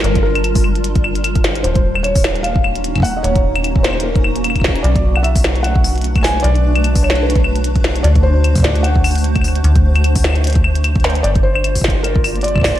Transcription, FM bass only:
0.04 G1
1.64 D#1
3.24 D#1
4.84 B1
6.44 B1
8.04 D2
9.64 D2
11.24 G1

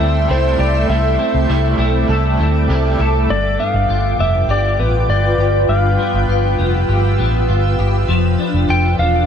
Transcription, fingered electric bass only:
0.00 D2
0.30 C2
0.59 C2
0.89 C2
1.34 C2
1.50 C2
1.78 B1
2.09 C2
2.39 D2
2.69 C2
2.99 C2
3.29 G1
3.74 G1
3.89 G1
4.19 F1
4.48 G1
4.79 A1
5.09 G1
5.38 G1
5.69 G1
6.14 G1
6.29 G1
6.59 F1
6.89 G1
7.19 A1
7.49 G1
7.79 G1
8.08 F1
8.54 F1
8.69 F1
8.99 E1

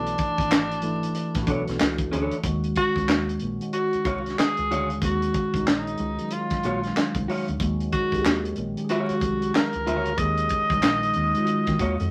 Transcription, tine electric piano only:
Already playing: E3 A3 C#4 D4 E4 F#4
0.82 E3 A3 D4 E4
1.34 E3 A3 D4 E4
1.43 F#4
2.43 D#3 G#3 C#4 F#4
2.97 D#3 G#3 C#4 F#4
3.60 D#3 G#3 C#4 F#4
5.02 D#3 G#3 C#4 G#4
5.54 D#3 G#3 C#4 D#4
6.18 D#3 F#3 G#3 C#4
7.60 D#3 G#3 C#4 F#4
8.13 D#3 G#3 C#4 G4
8.21 G#4
8.76 D#3 G#3 C#4 G4
8.84 G#4
10.18 D#3 G#3 C#4 G#4
10.71 D#3 G#3 C#4 D#4
11.35 D#3 G#3 C#4 F4
11.44 F#4

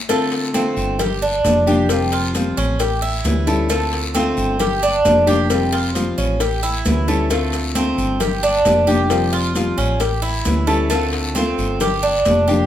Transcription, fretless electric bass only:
0.77 G1
1.45 F1
2.58 A1
3.25 D2
4.37 G1
5.05 F1
6.18 A1
6.86 D2
7.98 G1
8.65 F1
9.78 A1
10.46 D2
11.58 G1
12.26 F1

